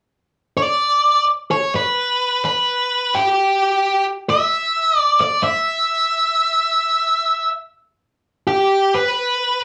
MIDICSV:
0, 0, Header, 1, 2, 480
1, 0, Start_track
1, 0, Tempo, 464396
1, 604, Time_signature, 4, 2, 24, 8
1, 9967, End_track
2, 0, Start_track
2, 0, Title_t, "Lead electric guitar"
2, 0, Program_c, 0, 29
2, 593, Note_on_c, 0, 74, 91
2, 1277, Note_off_c, 0, 74, 0
2, 1564, Note_on_c, 0, 73, 82
2, 1810, Note_off_c, 0, 73, 0
2, 1814, Note_on_c, 0, 71, 89
2, 2520, Note_off_c, 0, 71, 0
2, 2532, Note_on_c, 0, 71, 86
2, 3253, Note_on_c, 0, 67, 71
2, 3271, Note_off_c, 0, 71, 0
2, 4169, Note_off_c, 0, 67, 0
2, 4443, Note_on_c, 0, 76, 93
2, 5146, Note_off_c, 0, 76, 0
2, 5146, Note_on_c, 0, 74, 93
2, 5377, Note_off_c, 0, 74, 0
2, 5382, Note_on_c, 0, 74, 85
2, 5614, Note_off_c, 0, 74, 0
2, 5618, Note_on_c, 0, 76, 80
2, 7750, Note_off_c, 0, 76, 0
2, 8759, Note_on_c, 0, 67, 73
2, 9245, Note_on_c, 0, 71, 94
2, 9255, Note_off_c, 0, 67, 0
2, 9921, Note_off_c, 0, 71, 0
2, 9967, End_track
0, 0, End_of_file